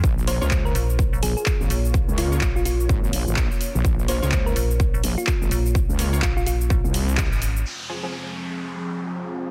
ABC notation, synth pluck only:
X:1
M:4/4
L:1/16
Q:"Swing 16ths" 1/4=126
K:Bbdor
V:1 name="Synth pluck"
z2 c c z B z4 A A z4 | z2 F z2 F F z8 z | z2 c c z B z4 z F z4 | z4 F F F z8 z |
z16 |]